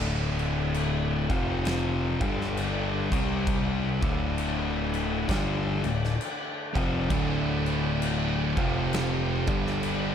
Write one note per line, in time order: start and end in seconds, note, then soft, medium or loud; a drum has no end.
0.00 1.26 D1 loud
0.00 1.27 D2 loud
0.00 1.28 A2 loud
0.00 1.27 D3 medium
0.00 1.28 D3 loud
0.00 1.27 A3 medium
0.00 1.27 E4 medium
0.39 crash medium
0.74 crash medium
1.29 2.17 F1 loud
1.29 2.19 F2 medium
1.29 2.19 C3 medium
1.29 2.19 F3 medium
1.29 2.20 F3 loud
1.29 2.19 C4 medium
1.29 2.19 G4 medium
1.29 kick loud
1.29 crash medium
1.65 snare loud
1.65 crash medium
2.20 3.08 G1 loud
2.20 3.10 G2 medium
2.20 3.10 D3 medium
2.20 4.00 G3 medium
2.20 3.10 G3 loud
2.20 3.11 D4 medium
2.20 3.10 A4 medium
2.20 kick loud
2.20 crash medium
2.41 snare soft
2.57 crash medium
3.12 3.99 C2 loud
3.12 4.01 C3 loud
3.12 4.02 C3 medium
3.12 4.01 G3 loud
3.12 4.01 C4 loud
3.12 4.02 D4 medium
3.12 kick loud
3.12 crash loud
3.47 kick loud
3.47 crash medium
4.02 5.24 D1 loud
4.02 5.28 D2 loud
4.02 5.28 A2 loud
4.02 5.28 D3 loud
4.02 8.54 D3 medium
4.02 8.54 A3 medium
4.02 5.84 E4 medium
4.02 kick loud
4.02 crash medium
4.38 crash medium
4.94 crash medium
5.29 5.80 G1 medium
5.29 5.83 G2 medium
5.29 5.83 D3 medium
5.29 5.83 G3 loud
5.29 kick loud
5.29 snare loud
5.29 crash medium
5.84 6.17 D1 medium
5.84 6.13 D2 medium
5.84 6.13 A2 medium
5.84 8.54 D4 medium
5.84 crash medium
6.04 snare soft
6.21 crash medium
6.75 7.08 F1 loud
6.75 7.10 F2 loud
6.75 7.10 C3 loud
6.75 7.10 F3 loud
6.75 kick loud
6.75 crash medium
7.10 8.53 D1 loud
7.10 8.55 D2 medium
7.10 8.56 A2 medium
7.10 8.56 D3 loud
7.10 kick loud
7.10 crash medium
7.66 crash medium
8.02 crash medium
8.57 9.44 F1 loud
8.57 9.47 F2 medium
8.57 9.47 C3 loud
8.57 9.47 F3 medium
8.57 9.47 F3 loud
8.57 9.47 C4 medium
8.57 9.47 G4 medium
8.57 kick loud
8.57 crash medium
8.93 snare loud
8.93 crash medium
9.47 10.15 G1 loud
9.47 10.15 G2 loud
9.47 10.15 D3 loud
9.47 10.15 G3 medium
9.47 10.15 G3 loud
9.47 10.15 D4 medium
9.47 10.15 A4 medium
9.47 kick loud
9.47 crash medium
9.67 snare soft
9.83 crash medium